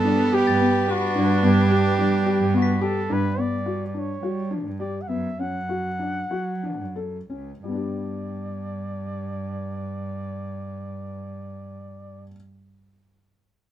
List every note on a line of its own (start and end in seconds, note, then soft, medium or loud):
0.00 3.35 G3 medium
0.00 0.89 B3 loud
0.00 3.35 B3 medium
0.00 0.36 A4 loud
0.00 3.35 B4 medium
0.04 0.30 G3 loud
0.04 0.20 D4 medium
0.32 0.48 G4 loud
0.32 0.92 G4 loud
0.46 0.72 G2 medium
0.46 2.61 A6 medium
0.60 0.76 B3 medium
0.88 3.10 D4 medium
0.88 1.45 F#4 loud
0.88 1.04 G4 medium
1.15 1.29 G2 loud
1.15 1.31 D4 medium
1.43 1.69 G2 loud
1.43 1.59 B3 medium
1.43 2.52 G4 loud
1.70 1.86 G4 medium
1.98 2.24 G3 loud
1.98 2.14 D4 medium
2.26 2.42 G4 medium
2.40 2.66 G2 loud
2.54 2.70 B3 medium
2.54 2.84 F#4 medium
2.62 3.62 B6 medium
2.81 2.97 G4 medium
2.81 3.14 A4 medium
3.10 3.23 G2 loud
3.10 3.26 D4 medium
3.10 3.42 B4 loud
3.38 4.18 G2 medium
3.38 3.54 B3 medium
3.38 3.87 D5 medium
3.66 3.82 F#4 medium
3.87 4.01 D5 medium
3.94 4.10 D4 medium
3.99 4.53 C#5 medium
4.22 4.67 G3 medium
4.22 4.39 F#4 medium
4.51 4.67 D4 medium
4.65 5.06 G2 medium
4.79 4.97 G4 medium
4.79 5.03 D5 medium
5.02 5.10 F#5 medium
5.08 5.37 F#2 medium
5.08 5.26 B3 medium
5.08 5.41 E5 medium
5.39 6.27 F#2 medium
5.39 5.56 C#4 medium
5.39 6.97 F#5 medium
5.69 5.87 F#4 medium
5.99 6.17 D4 medium
6.31 6.82 F#3 medium
6.31 6.49 F#4 medium
6.63 6.82 D4 medium
6.80 7.26 F#2 medium
6.96 7.15 A4 medium
7.30 7.62 C#2 medium
7.30 7.49 C#4 medium
7.64 12.24 G2 medium
7.64 12.23 G3 soft
7.64 12.24 D5 medium
7.68 12.27 B3 soft
7.68 12.31 D4 soft
7.76 12.35 G4 soft